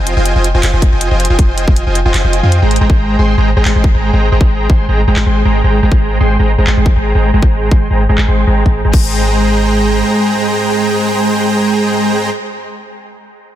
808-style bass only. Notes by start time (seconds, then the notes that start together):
Already playing: F1
0.17 F1
0.35 F1
0.54 F1
0.63 F1
0.73 F1
0.92 F1
1.11 F1
1.30 F1
1.39 F1
1.68 F1
1.86 F1
2.05 F1
2.14 F1
2.24 F1
2.43 F2
2.62 G#1
2.81 G#1
3.19 G#1
3.38 G#1
3.56 G#1
3.65 G#1
3.75 G#1
3.94 G#1
4.13 G#1
4.32 G#1
4.70 G#1
4.88 G#1
5.07 G#1
5.16 G#1
5.26 G#1
5.45 G#1
5.64 G#1
5.83 G#1
6.20 G#1
6.39 G#1
6.58 G#1
6.67 G#1
6.77 G#1
6.96 G#1
7.15 G#1
7.34 G#1
7.72 G#1
7.90 G#1
8.09 G#1
8.18 G#1
8.28 G#1
8.47 G#1
8.66 G#1
8.85 G#1
8.94 G#1